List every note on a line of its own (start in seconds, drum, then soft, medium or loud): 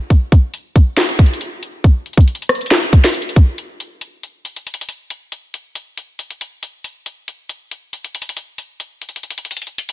0.10 kick loud
0.10 closed hi-hat medium
0.32 kick loud
0.32 closed hi-hat medium
0.54 closed hi-hat medium
0.76 kick loud
0.76 closed hi-hat medium
0.97 snare loud
0.97 clap medium
0.97 closed hi-hat medium
1.09 closed hi-hat medium
1.19 kick medium
1.19 closed hi-hat medium
1.26 closed hi-hat medium
1.34 closed hi-hat medium
1.41 closed hi-hat medium
1.63 closed hi-hat medium
1.84 kick loud
1.84 closed hi-hat medium
2.06 closed hi-hat soft
2.13 closed hi-hat soft
2.17 kick loud
2.17 closed hi-hat medium
2.28 closed hi-hat medium
2.35 closed hi-hat medium
2.42 closed hi-hat medium
2.49 cross-stick loud
2.49 closed hi-hat medium
2.55 closed hi-hat medium
2.61 closed hi-hat soft
2.66 closed hi-hat medium
2.71 snare loud
2.71 clap medium
2.71 closed hi-hat soft
2.83 closed hi-hat medium
2.93 kick medium
2.93 closed hi-hat medium
3.04 snare medium
3.15 closed hi-hat medium
3.22 closed hi-hat medium
3.29 closed hi-hat medium
3.36 kick loud
3.36 closed hi-hat medium
3.58 closed hi-hat medium
3.80 closed hi-hat medium
4.01 closed hi-hat medium
4.23 closed hi-hat medium
4.45 closed hi-hat medium
4.56 closed hi-hat medium
4.67 closed hi-hat medium
4.74 closed hi-hat medium
4.81 closed hi-hat medium
4.89 closed hi-hat medium
5.10 closed hi-hat medium
5.32 closed hi-hat medium
5.54 closed hi-hat medium
5.75 closed hi-hat medium
5.98 closed hi-hat medium
6.19 closed hi-hat medium
6.31 closed hi-hat soft
6.41 closed hi-hat medium
6.63 closed hi-hat medium
6.84 closed hi-hat medium
7.06 closed hi-hat medium
7.28 closed hi-hat medium
7.49 closed hi-hat medium
7.71 closed hi-hat medium
7.93 closed hi-hat medium
8.05 closed hi-hat medium
8.15 closed hi-hat medium
8.22 closed hi-hat medium
8.29 closed hi-hat medium
8.37 closed hi-hat medium
8.58 closed hi-hat medium
8.80 closed hi-hat medium
9.02 closed hi-hat soft
9.09 closed hi-hat soft
9.16 closed hi-hat soft
9.23 closed hi-hat medium
9.30 closed hi-hat medium
9.38 closed hi-hat medium
9.45 closed hi-hat medium
9.51 closed hi-hat soft
9.57 closed hi-hat soft
9.62 closed hi-hat soft
9.67 closed hi-hat soft
9.78 closed hi-hat medium
9.89 closed hi-hat medium